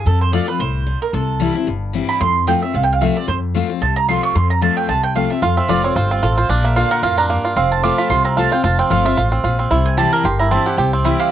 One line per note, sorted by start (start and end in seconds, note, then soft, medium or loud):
0.06 0.39 F2 loud
0.06 0.58 F2 loud
0.06 0.21 A4 medium
0.21 0.33 C5 medium
0.33 0.47 F3 medium
0.33 0.48 A3 medium
0.33 0.48 C4 loud
0.33 0.47 F4 loud
0.33 0.48 D5 loud
0.48 0.60 C4 medium
0.48 0.59 F4 medium
0.48 0.60 B4 loud
0.60 0.92 C2 medium
0.60 0.86 A2 medium
0.60 0.99 C5 loud
0.87 1.12 A#2 medium
1.02 1.13 A#4 medium
1.13 1.46 C2 loud
1.13 1.65 C3 loud
1.13 1.53 A4 medium
1.40 1.54 E3 medium
1.40 1.55 G3 loud
1.40 1.55 C4 loud
1.40 1.54 E4 loud
1.55 1.68 C4 medium
1.55 1.67 E4 medium
1.67 2.00 G1 medium
1.67 2.19 G2 medium
1.93 2.19 E3 medium
1.93 2.20 G3 medium
1.93 2.20 C4 loud
1.93 2.20 E4 medium
2.09 2.20 B5 loud
2.20 2.53 F2 loud
2.20 2.72 F2 loud
2.20 2.46 C6 loud
2.47 2.62 F3 loud
2.47 2.62 A3 loud
2.47 2.62 C4 loud
2.47 2.61 F4 loud
2.47 2.62 G5 loud
2.62 2.75 C4 medium
2.62 2.74 F4 medium
2.62 2.74 E5 loud
2.74 3.07 C2 medium
2.74 3.26 C3 medium
2.74 2.83 F5 medium
2.83 2.92 G5 loud
2.92 3.01 F5 loud
3.01 3.15 F3 loud
3.01 3.16 A3 medium
3.01 3.16 C4 medium
3.01 3.15 F4 medium
3.01 3.16 E5 medium
3.16 3.29 C4 medium
3.16 3.28 F4 medium
3.16 3.28 D5 medium
3.28 3.60 F2 loud
3.28 3.80 F2 loud
3.28 3.37 C5 medium
3.55 3.69 F3 loud
3.55 3.69 A3 loud
3.55 3.70 C4 loud
3.55 3.68 F4 loud
3.70 3.82 C4 medium
3.70 3.81 F4 medium
3.82 4.14 C2 medium
3.82 4.33 C3 medium
3.82 3.96 A5 loud
3.96 4.08 A#5 loud
4.08 4.34 F3 medium
4.08 4.35 A3 medium
4.08 4.35 C4 medium
4.08 4.35 F4 loud
4.08 4.23 C6 loud
4.23 4.35 C#6 loud
4.35 4.68 F2 loud
4.35 4.87 F2 loud
4.35 4.50 C6 loud
4.50 4.62 A#5 loud
4.62 4.87 F3 loud
4.62 4.88 A3 loud
4.62 4.88 C4 loud
4.62 4.88 F4 medium
4.62 4.76 A5 loud
4.77 4.88 G5 loud
4.89 5.21 C2 medium
4.89 5.40 C3 loud
4.89 5.03 A5 loud
5.03 5.15 G5 loud
5.15 5.30 F3 medium
5.15 5.30 A3 medium
5.15 5.30 C4 medium
5.15 5.29 F4 medium
5.15 5.30 F5 medium
5.30 5.43 C4 medium
5.30 5.42 F4 medium
5.30 5.42 E5 medium
5.42 5.59 F2 medium
5.42 5.94 F2 loud
5.42 5.69 F4 medium
5.42 5.57 F5 medium
5.57 5.83 C4 medium
5.57 5.69 E5 medium
5.68 5.92 F1 medium
5.68 5.83 F3 loud
5.68 5.83 A3 loud
5.68 5.84 C4 loud
5.68 5.96 F4 medium
5.68 5.82 F4 loud
5.68 5.84 D5 medium
5.84 6.10 C4 medium
5.84 5.96 C4 soft
5.84 5.95 F4 medium
5.84 5.96 C#5 loud
5.96 6.19 G1 medium
5.96 6.22 G2 medium
5.96 6.23 F4 medium
5.96 6.11 C5 medium
6.11 6.47 C4 medium
6.11 6.22 F4 medium
6.22 6.45 A1 medium
6.22 6.48 A2 medium
6.22 6.37 F4 medium
6.22 6.37 A4 medium
6.37 6.76 F4 medium
6.37 6.49 C5 medium
6.49 6.82 A#1 loud
6.49 7.01 A#2 loud
6.49 6.88 D4 medium
6.49 6.64 D5 medium
6.64 7.01 A#3 medium
6.64 6.76 E5 loud
6.76 7.02 D3 loud
6.76 7.02 A#3 loud
6.76 7.02 D4 loud
6.76 7.03 F4 medium
6.76 7.03 F4 loud
6.76 6.91 F5 loud
6.91 7.28 A#4 medium
6.91 7.03 F#5 loud
7.03 7.35 F2 medium
7.03 7.29 A2 medium
7.03 7.44 F4 medium
7.03 7.17 F5 loud
7.17 7.54 D4 medium
7.17 7.25 A#5 loud
7.30 7.56 G2 loud
7.30 7.56 A#3 medium
7.45 7.83 F4 medium
7.56 7.89 F1 loud
7.56 8.08 F2 loud
7.56 8.25 C4 medium
7.56 7.71 F5 medium
7.71 7.83 A5 loud
7.83 8.09 F3 medium
7.83 8.09 A3 loud
7.83 8.10 C4 loud
7.83 7.97 F4 medium
7.83 8.10 F4 loud
7.83 7.98 D6 loud
7.98 8.09 F4 medium
7.98 8.09 B5 loud
8.10 8.43 C2 loud
8.10 8.61 C3 loud
8.10 8.36 F4 medium
8.10 8.24 C6 loud
8.25 8.78 C4 medium
8.25 8.36 A#5 loud
8.37 8.51 F3 medium
8.37 8.52 A3 medium
8.37 8.52 C4 medium
8.37 8.51 F4 medium
8.37 8.50 F4 loud
8.37 8.51 A5 loud
8.51 8.64 C4 medium
8.51 8.63 F4 medium
8.51 8.63 G5 loud
8.63 8.80 F1 loud
8.63 9.15 F2 loud
8.63 8.89 F4 medium
8.63 8.78 A5 loud
8.79 9.31 C4 medium
8.79 8.90 G5 loud
8.90 9.13 G1 medium
8.90 9.05 F3 medium
8.90 9.05 A3 medium
8.90 9.05 C4 loud
8.90 9.04 F4 medium
8.90 9.03 F4 loud
8.90 9.05 F5 loud
9.05 9.17 C4 medium
9.05 9.16 F4 medium
9.05 9.17 E5 loud
9.17 9.40 A1 medium
9.17 9.43 A2 medium
9.17 9.43 F4 medium
9.17 9.26 F5 medium
9.32 9.59 C4 medium
9.44 9.67 A#1 medium
9.44 9.70 A#2 medium
9.44 9.71 F4 medium
9.59 10.16 C4 medium
9.71 10.03 C2 loud
9.71 10.22 C3 loud
9.71 10.16 E4 medium
9.86 9.97 G#5 loud
9.97 10.23 E3 medium
9.97 10.23 G3 loud
9.97 10.24 C4 loud
9.97 10.24 E4 loud
9.97 10.25 G4 medium
9.97 10.12 A5 loud
10.13 10.49 A#4 medium
10.13 10.24 A#5 medium
10.24 10.57 G1 loud
10.24 10.76 G2 loud
10.24 10.66 G4 medium
10.24 10.39 C6 loud
10.39 11.05 E4 medium
10.39 10.51 A#5 loud
10.51 10.77 E3 medium
10.51 10.77 G3 medium
10.51 10.93 C4 medium
10.51 10.77 C4 medium
10.51 10.77 E4 loud
10.51 10.66 A5 medium
10.66 10.77 G4 medium
10.66 10.77 F#5 medium
10.77 11.10 C2 loud
10.77 11.29 C3 loud
10.77 11.17 G4 medium
10.77 11.17 G5 loud
10.93 11.32 C4 medium
11.04 11.30 E3 medium
11.04 11.30 G3 loud
11.04 11.31 C4 loud
11.04 11.30 E4 medium
11.04 11.31 E4 loud
11.19 11.32 G4 medium
11.19 11.31 F5 loud